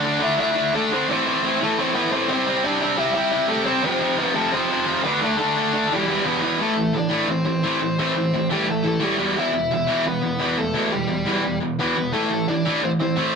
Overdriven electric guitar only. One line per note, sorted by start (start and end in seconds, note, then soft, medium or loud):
0.00 0.20 D4 medium
0.00 0.24 D5 loud
0.24 0.39 E4 medium
0.24 0.39 E5 medium
0.40 0.72 E4 medium
0.40 0.72 E5 loud
0.75 0.90 A3 medium
0.75 0.90 A4 medium
0.93 1.08 C4 medium
0.93 1.08 C5 medium
1.11 1.58 C4 medium
1.11 1.58 C5 loud
1.63 1.78 A3 medium
1.63 1.79 A4 medium
1.78 1.94 C4 medium
1.78 1.95 C5 medium
1.94 2.10 B3 medium
1.94 2.12 B4 medium
2.11 2.27 C4 medium
2.11 2.28 C5 loud
2.28 2.60 C4 medium
2.28 2.61 C5 loud
2.64 2.96 D4 medium
2.64 2.96 D5 loud
2.97 3.12 E4 medium
2.97 3.13 E5 loud
3.13 3.46 E4 medium
3.13 3.50 E5 loud
3.47 3.64 A3 medium
3.47 3.66 A4 loud
3.64 3.81 C4 medium
3.64 3.83 C5 medium
3.84 4.32 C4 medium
3.84 4.20 C5 loud
4.20 4.32 B4 loud
4.34 4.51 A3 medium
4.34 4.51 A4 loud
4.52 5.00 C4 medium
4.52 5.01 C5 loud
5.03 5.20 B3 medium
5.03 5.24 B4 medium
5.22 5.36 A3 medium
5.22 5.39 A4 medium
5.38 5.86 A3 medium
5.38 5.93 A4 loud
5.93 6.40 G3 medium
5.93 6.41 G4 medium
6.26 6.58 B3 medium
6.26 6.57 B4 loud
6.61 6.92 A3 medium
6.61 6.96 A4 medium
6.97 7.28 D4 medium
6.97 7.28 D5 loud
7.30 7.45 C4 medium
7.30 7.45 C5 medium
7.46 7.94 C4 medium
7.46 7.98 C5 medium
7.99 8.47 C4 medium
7.99 8.47 C5 medium
8.52 8.67 G3 medium
8.52 8.69 G4 loud
8.70 8.85 A3 medium
8.70 8.86 A4 loud
8.87 9.02 A3 medium
8.87 9.04 A4 medium
9.03 9.35 G3 medium
9.03 9.37 G4 medium
9.39 9.70 E4 medium
9.39 9.73 E5 loud
9.74 10.05 E4 medium
9.74 10.07 E5 loud
10.07 10.55 B3 medium
10.07 10.60 B4 loud
10.57 10.90 A3 medium
10.57 10.92 A4 loud
10.92 11.58 G3 medium
10.92 11.58 G4 medium
11.79 12.11 B3 medium
11.79 12.12 B4 loud
12.13 12.45 A3 medium
12.13 12.46 A4 loud
12.48 12.80 D4 medium
12.48 12.81 D5 loud
12.84 12.89 C4 medium
12.84 12.90 C5 loud
13.00 13.35 C4 medium
13.00 13.35 C5 medium